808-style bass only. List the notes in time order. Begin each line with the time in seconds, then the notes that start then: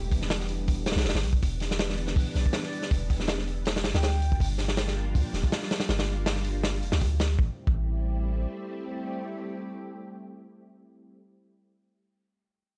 Already playing: E1
0.86 D1
0.96 B1
1.05 E1
1.15 G1
1.23 B1
1.43 E1
2.16 B1
2.35 B1
2.91 E1
3.84 G1
3.94 D2
4.40 G1
5.15 D2
5.33 D1
5.89 G1
6.82 F1
6.92 D2
7.39 A1
7.67 A1